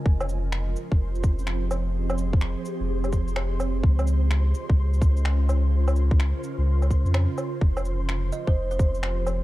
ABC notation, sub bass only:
X:1
M:4/4
L:1/16
Q:"Swing 16ths" 1/4=127
K:Fm
V:1 name="Sub bass" clef=bass
F,,,6 z F,,,8- F,,,- | F,,,4- F,,, z2 F,,,8- F,,, | D,,6 z D,,8- D,,- | D,,4- D,, z2 D,,4 F,,2 z3 |
F,,,6 z F,,,8- F,,, |]